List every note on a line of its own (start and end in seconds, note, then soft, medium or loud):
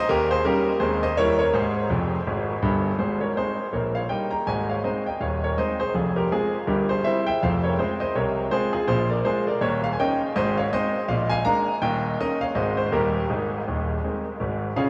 0.09 0.40 D#2 medium
0.09 0.29 G4 medium
0.09 0.27 A#4 loud
0.31 0.44 G#4 medium
0.31 0.43 C5 medium
0.45 0.65 G3 medium
0.45 0.65 C#4 medium
0.45 0.65 D#4 medium
0.45 0.79 G4 medium
0.45 0.76 A#4 medium
0.79 1.11 D#2 medium
0.79 1.00 G#3 soft
0.79 1.01 C4 soft
0.79 1.01 D#4 soft
0.79 1.01 G#4 medium
0.79 0.99 C5 medium
1.03 1.17 C5 medium
1.03 1.15 D#5 medium
1.17 1.49 D#2 medium
1.17 1.38 G3 soft
1.17 1.38 A#3 soft
1.17 1.38 E4 medium
1.17 1.38 A#4 medium
1.17 1.36 C#5 loud
1.39 1.53 A#4 medium
1.39 1.51 C#5 medium
1.53 1.85 G#2 medium
1.53 2.82 G#4 medium
1.53 2.66 C5 medium
1.90 2.17 F1 medium
1.90 2.18 F2 medium
2.27 2.54 G#1 medium
2.27 2.54 G#2 medium
2.62 2.91 G1 medium
2.62 2.90 G2 medium
2.99 3.31 G#1 soft
2.99 3.31 G#2 medium
2.99 3.20 G#4 soft
2.99 3.18 C5 medium
3.21 3.36 A#4 soft
3.21 3.34 C#5 medium
3.36 3.57 G#3 soft
3.36 3.57 C4 soft
3.36 3.58 D#4 soft
3.36 3.72 G#4 soft
3.36 3.68 C5 medium
3.72 4.05 A#1 soft
3.72 4.04 A#2 soft
3.72 3.94 A#4 soft
3.72 3.92 C#5 soft
3.95 4.10 C#5 soft
3.95 4.08 F5 medium
4.09 4.30 G3 soft
4.09 4.30 A#3 soft
4.09 4.31 D#4 soft
4.09 4.31 D#5 soft
4.09 4.28 G5 medium
4.31 4.46 G5 soft
4.31 4.44 A#5 medium
4.46 4.78 G#1 soft
4.46 4.79 G#2 medium
4.46 4.68 D#5 soft
4.46 4.66 G#5 medium
4.69 4.84 C#5 soft
4.69 4.82 F5 medium
4.84 5.04 G#3 soft
4.84 5.04 C4 soft
4.84 5.05 D#4 soft
4.84 5.05 C5 soft
4.84 5.03 D#5 medium
5.06 5.21 D#5 soft
5.06 5.19 G5 medium
5.20 5.52 D#1 medium
5.20 5.52 D#2 medium
5.20 5.42 C#5 medium
5.20 5.39 F5 medium
5.44 5.58 A#4 soft
5.44 5.56 C#5 medium
5.58 5.78 G#3 soft
5.58 5.78 C4 soft
5.58 5.78 D#4 soft
5.58 5.78 C5 medium
5.58 5.76 D#5 medium
5.80 5.94 G#4 medium
5.80 5.92 C5 medium
5.94 6.26 F1 soft
5.94 6.26 F2 soft
5.94 6.16 F4 soft
5.94 6.13 G#4 medium
6.16 6.30 G4 soft
6.16 6.29 A#4 medium
6.32 6.52 G#3 soft
6.32 6.52 C4 soft
6.32 6.66 F4 soft
6.32 6.63 G#4 medium
6.67 6.99 G1 soft
6.67 6.99 G2 medium
6.67 6.88 G4 soft
6.67 6.86 A#4 medium
6.89 7.04 G#4 soft
6.89 7.02 C5 medium
7.04 7.24 G3 soft
7.04 7.25 C4 soft
7.04 7.25 E4 soft
7.04 7.25 C5 medium
7.04 7.23 E5 medium
7.27 7.41 E5 medium
7.27 7.39 G5 medium
7.43 7.73 F1 medium
7.43 7.73 F2 medium
7.43 7.63 C5 soft
7.43 7.61 F5 medium
7.64 7.78 A#4 soft
7.64 7.76 C#5 medium
7.78 7.99 G#3 soft
7.78 7.99 C4 soft
7.78 7.99 F4 soft
7.78 7.99 G#4 medium
7.78 7.97 C5 medium
8.00 8.14 C5 medium
8.00 8.13 D#5 medium
8.15 8.46 C2 soft
8.15 8.46 C3 medium
8.15 8.50 A#4 medium
8.15 8.46 C#5 medium
8.51 8.72 G#3 soft
8.51 8.72 C4 soft
8.51 8.72 F4 medium
8.51 8.71 G#4 medium
8.51 8.70 C5 medium
8.73 8.88 F4 medium
8.73 8.86 G#4 medium
8.87 9.19 A#1 medium
8.87 9.19 A#2 medium
8.87 9.09 G#4 medium
8.87 9.06 C5 medium
9.10 9.25 A#4 soft
9.10 9.22 D5 medium
9.25 9.45 G#3 soft
9.25 9.45 A#3 soft
9.25 9.46 F4 medium
9.25 9.46 G#4 medium
9.25 9.43 C5 medium
9.47 9.61 A#4 medium
9.47 9.60 D5 medium
9.61 9.93 D#1 medium
9.61 9.92 D#2 medium
9.61 9.82 A#4 medium
9.61 9.80 C#5 medium
9.84 9.91 F5 medium
9.93 9.98 G#5 medium
10.00 10.19 A#3 soft
10.00 10.20 C#4 medium
10.00 10.20 D#4 medium
10.00 10.34 D#5 medium
10.00 10.30 G5 medium
10.36 10.67 G#1 medium
10.36 10.67 G#2 medium
10.36 10.56 C5 medium
10.36 10.54 D#5 medium
10.57 10.72 C#5 medium
10.57 10.70 F5 medium
10.72 10.93 G#3 soft
10.72 10.93 C4 soft
10.72 10.93 D#4 medium
10.72 11.07 C5 medium
10.72 11.04 D#5 medium
11.08 11.40 A#1 medium
11.08 11.40 A#2 medium
11.08 11.30 D5 medium
11.08 11.27 F5 medium
11.30 11.44 F5 medium
11.30 11.43 G#5 medium
11.45 11.65 G#3 soft
11.45 11.65 A#3 medium
11.45 11.66 D4 medium
11.45 11.80 F5 medium
11.45 11.76 A#5 loud
11.82 12.13 D#1 medium
11.82 12.13 D#2 medium
11.82 12.17 D#5 medium
11.82 12.13 G5 medium
12.20 12.40 A#3 soft
12.20 12.40 C#4 soft
12.20 12.41 D#4 soft
12.20 12.40 A#4 medium
12.20 12.39 D#5 medium
12.41 12.56 C#5 medium
12.41 12.54 F5 medium
12.55 12.87 G#1 medium
12.55 12.87 G#2 medium
12.55 12.76 G#3 soft
12.55 12.76 C4 soft
12.55 12.77 D#4 soft
12.55 12.76 C5 medium
12.55 12.74 D#5 medium
12.77 12.85 C5 medium
12.86 12.93 C5 medium
12.92 13.24 D#1 medium
12.92 13.24 D#2 medium
12.92 13.13 G3 soft
12.92 13.13 A#3 soft
12.92 13.14 D#4 soft
12.92 13.28 G4 medium
12.92 13.24 A#4 medium
13.30 13.59 G#1 soft
13.30 13.59 G#2 medium
13.30 14.02 D#4 soft
13.30 14.24 G#4 soft
13.68 13.97 D#1 medium
13.68 13.97 D#2 medium
14.04 14.24 G#3 soft
14.04 14.24 C4 soft
14.04 14.24 D#4 soft
14.40 14.70 G#1 medium
14.40 14.70 G#2 medium
14.76 14.89 C#3 medium
14.76 14.89 F4 medium
14.76 14.89 G#4 medium
14.76 14.89 C#5 medium
14.76 14.89 F5 medium